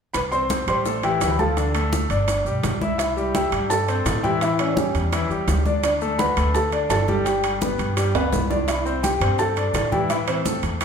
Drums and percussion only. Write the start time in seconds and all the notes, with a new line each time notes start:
0.14 high bongo, high conga, high timbale, maracas
0.32 high conga, maracas
0.50 high bongo, high conga, high timbale, low timbale, maracas
0.68 high conga, high timbale, maracas
0.85 high bongo, high conga, maracas
1.03 high conga, high timbale, maracas
1.21 high bongo, low bongo, high conga, high timbale, low timbale, maracas
1.39 high conga, maracas
1.57 high bongo, high conga, high timbale, maracas
1.75 high bongo, high conga, high timbale, maracas
1.92 high bongo, high conga, low timbale, maracas
2.10 high bongo, high timbale, maracas
2.28 high bongo, high conga, high timbale, maracas
2.46 high conga, maracas
2.63 high bongo, low bongo, high conga, high timbale, low timbale, maracas
2.81 high bongo, high conga, maracas
2.99 high bongo, high conga, high timbale, maracas
3.17 high conga, maracas
3.35 high bongo, high conga, high timbale, low timbale, maracas
3.52 high conga, high timbale, maracas
3.70 high bongo, high conga, maracas
3.88 high conga, high timbale, maracas
4.06 high bongo, low bongo, high conga, high timbale, low timbale, maracas
4.24 high conga, maracas
4.41 high bongo, high conga, high timbale, maracas
4.59 high bongo, high conga, high timbale, maracas
4.77 high bongo, high conga, low timbale, maracas
4.95 high bongo, high timbale, maracas
5.12 high bongo, high conga, high timbale, maracas
5.30 high conga, maracas
5.48 high bongo, low bongo, high conga, high timbale, low timbale, maracas
5.66 high bongo, high conga, maracas
5.83 high bongo, high conga, high timbale, maracas
6.01 high conga, maracas
6.19 high bongo, high conga, high timbale, low timbale, maracas
6.37 high conga, high timbale, maracas
6.55 high bongo, high conga, maracas
6.72 high conga, high timbale, maracas
6.90 high bongo, low bongo, high conga, high timbale, low timbale, maracas
7.08 high conga, maracas
7.26 high bongo, high conga, high timbale, maracas
7.44 high bongo, high conga, high timbale, maracas
7.61 high bongo, high conga, low timbale, maracas
7.79 high bongo, high timbale, maracas
7.97 high bongo, high conga, high timbale, maracas
8.15 high conga, high timbale, maracas
8.33 high bongo, low bongo, high conga, low timbale, maracas
8.50 high bongo, high conga, low timbale, maracas
8.68 high bongo, high conga, high timbale, maracas
8.86 high conga, maracas
9.04 high bongo, high conga, high timbale, low timbale, maracas
9.21 high conga, high timbale, maracas
9.39 high bongo, high conga, maracas
9.57 high conga, high timbale, maracas
9.74 high bongo, low bongo, high conga, high timbale, low timbale, maracas
9.92 high conga, maracas
10.10 high bongo, high conga, high timbale, maracas
10.28 high bongo, high conga, high timbale, maracas
10.45 high bongo, high conga, low timbale, maracas
10.63 high bongo, high timbale, maracas
10.81 high bongo, high conga, high timbale, maracas